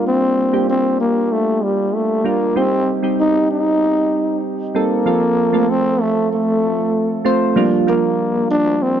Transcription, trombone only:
0, 0, Header, 1, 2, 480
1, 0, Start_track
1, 0, Key_signature, -2, "major"
1, 0, Tempo, 625000
1, 49, Time_signature, 4, 2, 24, 8
1, 6912, End_track
2, 0, Start_track
2, 0, Title_t, "Trombone"
2, 0, Program_c, 0, 57
2, 54, Note_on_c, 0, 60, 101
2, 501, Note_off_c, 0, 60, 0
2, 536, Note_on_c, 0, 60, 95
2, 756, Note_off_c, 0, 60, 0
2, 775, Note_on_c, 0, 58, 90
2, 1015, Note_on_c, 0, 57, 100
2, 1026, Note_off_c, 0, 58, 0
2, 1256, Note_on_c, 0, 55, 89
2, 1268, Note_off_c, 0, 57, 0
2, 1497, Note_on_c, 0, 57, 92
2, 1509, Note_off_c, 0, 55, 0
2, 1736, Note_on_c, 0, 58, 96
2, 1748, Note_off_c, 0, 57, 0
2, 1974, Note_on_c, 0, 60, 114
2, 1986, Note_off_c, 0, 58, 0
2, 2244, Note_off_c, 0, 60, 0
2, 2458, Note_on_c, 0, 63, 108
2, 2677, Note_off_c, 0, 63, 0
2, 2697, Note_on_c, 0, 63, 106
2, 3383, Note_off_c, 0, 63, 0
2, 3654, Note_on_c, 0, 58, 100
2, 4376, Note_on_c, 0, 60, 118
2, 4388, Note_off_c, 0, 58, 0
2, 4618, Note_on_c, 0, 57, 101
2, 4629, Note_off_c, 0, 60, 0
2, 4853, Note_off_c, 0, 57, 0
2, 4860, Note_on_c, 0, 57, 94
2, 5544, Note_off_c, 0, 57, 0
2, 6057, Note_on_c, 0, 58, 94
2, 6502, Note_off_c, 0, 58, 0
2, 6534, Note_on_c, 0, 62, 108
2, 6776, Note_on_c, 0, 60, 103
2, 6787, Note_off_c, 0, 62, 0
2, 6912, Note_off_c, 0, 60, 0
2, 6912, End_track
0, 0, End_of_file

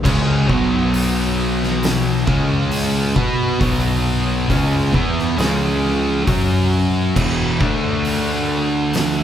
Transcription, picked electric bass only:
0, 0, Header, 1, 2, 480
1, 0, Start_track
1, 0, Tempo, 888889
1, 24, Time_signature, 4, 2, 24, 8
1, 4986, End_track
2, 0, Start_track
2, 0, Title_t, "Picked electric bass"
2, 0, Program_c, 0, 34
2, 28, Note_on_c, 0, 37, 88
2, 249, Note_off_c, 0, 37, 0
2, 266, Note_on_c, 0, 35, 87
2, 1204, Note_off_c, 0, 35, 0
2, 1228, Note_on_c, 0, 37, 93
2, 1685, Note_off_c, 0, 37, 0
2, 1707, Note_on_c, 0, 47, 105
2, 1929, Note_off_c, 0, 47, 0
2, 1948, Note_on_c, 0, 35, 94
2, 2405, Note_off_c, 0, 35, 0
2, 2430, Note_on_c, 0, 37, 101
2, 2651, Note_off_c, 0, 37, 0
2, 2669, Note_on_c, 0, 40, 93
2, 2891, Note_off_c, 0, 40, 0
2, 2906, Note_on_c, 0, 37, 94
2, 3364, Note_off_c, 0, 37, 0
2, 3389, Note_on_c, 0, 42, 96
2, 3845, Note_off_c, 0, 42, 0
2, 3866, Note_on_c, 0, 28, 101
2, 4089, Note_off_c, 0, 28, 0
2, 4106, Note_on_c, 0, 38, 91
2, 4986, Note_off_c, 0, 38, 0
2, 4986, End_track
0, 0, End_of_file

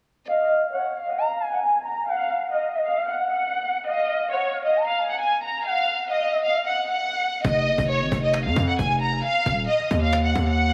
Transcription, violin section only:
0, 0, Header, 1, 2, 480
1, 0, Start_track
1, 0, Tempo, 447761
1, 301, Time_signature, 4, 2, 24, 8
1, 11507, End_track
2, 0, Start_track
2, 0, Title_t, "Violin section"
2, 0, Program_c, 0, 48
2, 299, Note_on_c, 0, 75, 105
2, 751, Note_off_c, 0, 75, 0
2, 782, Note_on_c, 0, 73, 78
2, 1120, Note_off_c, 0, 73, 0
2, 1138, Note_on_c, 0, 75, 78
2, 1341, Note_off_c, 0, 75, 0
2, 1378, Note_on_c, 0, 77, 79
2, 1581, Note_off_c, 0, 77, 0
2, 1625, Note_on_c, 0, 78, 83
2, 1724, Note_off_c, 0, 78, 0
2, 1738, Note_on_c, 0, 80, 90
2, 1941, Note_off_c, 0, 80, 0
2, 1986, Note_on_c, 0, 82, 81
2, 2185, Note_off_c, 0, 82, 0
2, 2223, Note_on_c, 0, 77, 114
2, 2673, Note_off_c, 0, 77, 0
2, 2702, Note_on_c, 0, 75, 83
2, 3040, Note_off_c, 0, 75, 0
2, 3060, Note_on_c, 0, 77, 87
2, 3262, Note_off_c, 0, 77, 0
2, 3302, Note_on_c, 0, 78, 75
2, 3503, Note_off_c, 0, 78, 0
2, 3539, Note_on_c, 0, 78, 90
2, 4104, Note_off_c, 0, 78, 0
2, 4146, Note_on_c, 0, 75, 110
2, 4595, Note_off_c, 0, 75, 0
2, 4625, Note_on_c, 0, 73, 90
2, 4962, Note_off_c, 0, 73, 0
2, 4983, Note_on_c, 0, 75, 79
2, 5184, Note_off_c, 0, 75, 0
2, 5224, Note_on_c, 0, 77, 86
2, 5425, Note_off_c, 0, 77, 0
2, 5464, Note_on_c, 0, 78, 84
2, 5564, Note_off_c, 0, 78, 0
2, 5580, Note_on_c, 0, 80, 81
2, 5782, Note_off_c, 0, 80, 0
2, 5822, Note_on_c, 0, 82, 79
2, 6023, Note_off_c, 0, 82, 0
2, 6061, Note_on_c, 0, 77, 105
2, 6512, Note_off_c, 0, 77, 0
2, 6544, Note_on_c, 0, 75, 89
2, 6881, Note_off_c, 0, 75, 0
2, 6903, Note_on_c, 0, 77, 84
2, 7104, Note_off_c, 0, 77, 0
2, 7140, Note_on_c, 0, 78, 74
2, 7342, Note_off_c, 0, 78, 0
2, 7386, Note_on_c, 0, 78, 88
2, 7948, Note_off_c, 0, 78, 0
2, 7978, Note_on_c, 0, 75, 103
2, 8431, Note_off_c, 0, 75, 0
2, 8463, Note_on_c, 0, 73, 87
2, 8800, Note_off_c, 0, 73, 0
2, 8818, Note_on_c, 0, 75, 83
2, 9021, Note_off_c, 0, 75, 0
2, 9058, Note_on_c, 0, 77, 81
2, 9261, Note_off_c, 0, 77, 0
2, 9305, Note_on_c, 0, 78, 92
2, 9404, Note_off_c, 0, 78, 0
2, 9418, Note_on_c, 0, 80, 88
2, 9621, Note_off_c, 0, 80, 0
2, 9665, Note_on_c, 0, 82, 83
2, 9865, Note_off_c, 0, 82, 0
2, 9902, Note_on_c, 0, 77, 119
2, 10353, Note_off_c, 0, 77, 0
2, 10381, Note_on_c, 0, 75, 90
2, 10720, Note_off_c, 0, 75, 0
2, 10740, Note_on_c, 0, 77, 92
2, 10942, Note_off_c, 0, 77, 0
2, 10982, Note_on_c, 0, 78, 76
2, 11184, Note_off_c, 0, 78, 0
2, 11219, Note_on_c, 0, 78, 91
2, 11507, Note_off_c, 0, 78, 0
2, 11507, End_track
0, 0, End_of_file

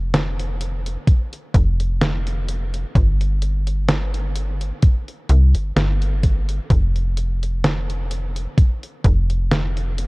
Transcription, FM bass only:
0, 0, Header, 1, 2, 480
1, 0, Start_track
1, 0, Tempo, 937500
1, 1511, Time_signature, 4, 2, 24, 8
1, 5156, End_track
2, 0, Start_track
2, 0, Title_t, "FM bass"
2, 0, Program_c, 0, 39
2, 0, Note_on_c, 0, 29, 98
2, 496, Note_off_c, 0, 29, 0
2, 791, Note_on_c, 0, 29, 94
2, 1456, Note_off_c, 0, 29, 0
2, 1510, Note_on_c, 0, 31, 96
2, 2415, Note_off_c, 0, 31, 0
2, 2711, Note_on_c, 0, 36, 94
2, 2838, Note_off_c, 0, 36, 0
2, 2841, Note_on_c, 0, 31, 45
2, 2929, Note_off_c, 0, 31, 0
2, 2951, Note_on_c, 0, 31, 81
2, 3376, Note_off_c, 0, 31, 0
2, 3430, Note_on_c, 0, 29, 97
2, 4336, Note_off_c, 0, 29, 0
2, 4633, Note_on_c, 0, 29, 98
2, 5156, Note_off_c, 0, 29, 0
2, 5156, End_track
0, 0, End_of_file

